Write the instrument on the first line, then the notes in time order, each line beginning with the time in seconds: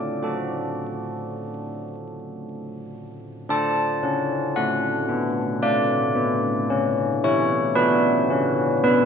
church bells
Already playing: D4 D5 D6
0.23 F#4 A4
3.49 D4 A4 A5
4.03 C#4
4.56 A3 F#5
5.09 B3
5.62 A3 D5
6.15 B3
6.70 C#4
7.24 E4 C#5
7.75 D4 F#4 B4
8.30 C#4
8.84 B3 B4